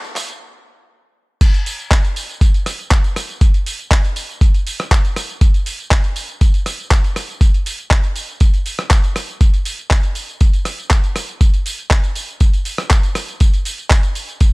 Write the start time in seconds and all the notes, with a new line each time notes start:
0.04 tambourine
0.16 clap, open hi-hat, tambourine
0.29 closed hi-hat, tambourine
1.41 kick, closed hi-hat, crash, tambourine
1.54 closed hi-hat, tambourine
1.66 open hi-hat, tambourine
1.79 closed hi-hat, tambourine
1.91 kick, clap, closed hi-hat, tambourine
2.04 closed hi-hat, tambourine
2.16 open hi-hat, tambourine
2.29 closed hi-hat, tambourine
2.41 kick, closed hi-hat, tambourine
2.54 closed hi-hat, tambourine
2.66 cross-stick, open hi-hat, tambourine
2.79 closed hi-hat, tambourine
2.91 kick, clap, closed hi-hat, tambourine
3.04 closed hi-hat, tambourine
3.16 cross-stick, open hi-hat, tambourine
3.29 closed hi-hat, tambourine
3.41 kick, closed hi-hat, tambourine
3.54 closed hi-hat, tambourine
3.66 open hi-hat, tambourine
3.80 closed hi-hat, tambourine
3.91 kick, clap, closed hi-hat, tambourine
4.05 closed hi-hat, tambourine
4.16 open hi-hat, tambourine
4.30 closed hi-hat, tambourine
4.41 kick, closed hi-hat, tambourine
4.54 closed hi-hat, tambourine
4.67 open hi-hat, tambourine
4.80 cross-stick, closed hi-hat, tambourine
4.91 kick, clap, closed hi-hat, tambourine
5.05 closed hi-hat, tambourine
5.16 cross-stick, open hi-hat, tambourine
5.29 closed hi-hat, tambourine
5.41 kick, closed hi-hat, tambourine
5.54 closed hi-hat, tambourine
5.66 open hi-hat, tambourine
5.79 closed hi-hat, tambourine
5.91 kick, clap, closed hi-hat, tambourine
6.04 closed hi-hat, tambourine
6.16 open hi-hat, tambourine
6.29 closed hi-hat, tambourine
6.41 kick, closed hi-hat, tambourine
6.54 closed hi-hat, tambourine
6.66 cross-stick, open hi-hat, tambourine
6.79 closed hi-hat, tambourine
6.91 kick, clap, closed hi-hat, tambourine
7.04 closed hi-hat, tambourine
7.16 cross-stick, open hi-hat, tambourine
7.29 closed hi-hat, tambourine
7.41 kick, closed hi-hat, tambourine
7.54 closed hi-hat, tambourine
7.66 open hi-hat, tambourine
7.79 closed hi-hat, tambourine
7.91 kick, clap, closed hi-hat, tambourine
8.04 closed hi-hat, tambourine
8.16 open hi-hat, tambourine
8.29 closed hi-hat, tambourine
8.40 kick, closed hi-hat, tambourine
8.54 closed hi-hat, tambourine
8.66 open hi-hat, tambourine
8.79 cross-stick, closed hi-hat, tambourine
8.90 kick, clap, closed hi-hat, tambourine
9.04 closed hi-hat, tambourine
9.16 cross-stick, open hi-hat, tambourine
9.29 closed hi-hat, tambourine
9.41 kick, closed hi-hat, tambourine
9.54 closed hi-hat, tambourine
9.65 open hi-hat, tambourine
9.79 closed hi-hat, tambourine
9.90 kick, clap, closed hi-hat, tambourine
10.03 closed hi-hat, tambourine
10.15 open hi-hat, tambourine
10.28 closed hi-hat, tambourine
10.41 kick, closed hi-hat, tambourine
10.53 closed hi-hat, tambourine
10.65 cross-stick, open hi-hat, tambourine
10.79 closed hi-hat, tambourine
10.90 kick, clap, closed hi-hat, tambourine
11.04 closed hi-hat, tambourine
11.16 cross-stick, open hi-hat, tambourine
11.29 closed hi-hat, tambourine
11.41 kick, closed hi-hat, tambourine
11.54 closed hi-hat, tambourine
11.66 open hi-hat, tambourine
11.79 closed hi-hat, tambourine
11.91 kick, clap, closed hi-hat, tambourine
12.04 closed hi-hat, tambourine
12.15 open hi-hat, tambourine
12.29 closed hi-hat, tambourine
12.40 kick, closed hi-hat, tambourine
12.54 closed hi-hat, tambourine
12.65 open hi-hat, tambourine
12.78 cross-stick, closed hi-hat, tambourine
12.90 kick, clap, closed hi-hat, tambourine
13.03 closed hi-hat, tambourine
13.15 cross-stick, open hi-hat, tambourine
13.28 closed hi-hat, tambourine
13.40 kick, closed hi-hat, tambourine
13.54 closed hi-hat, tambourine
13.65 open hi-hat, tambourine
13.78 closed hi-hat, tambourine
13.90 kick, clap, closed hi-hat, tambourine
14.03 closed hi-hat, tambourine
14.15 open hi-hat, tambourine
14.29 closed hi-hat, tambourine
14.41 kick, closed hi-hat, tambourine